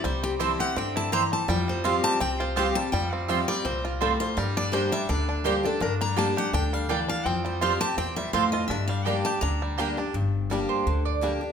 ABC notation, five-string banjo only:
X:1
M:4/4
L:1/8
Q:"Swing" 1/4=166
K:Gdor
V:1 name="Five-string banjo"
[G,G] C E G C E G G, | G, C F G C F G G, | G, C F G, C F G, F | G, D D G, D D G D |
D G, D G D G, D D | C G, F G C G, C F | D G, D G D G, D D | z2 [G,D] z3 [G,D] z |]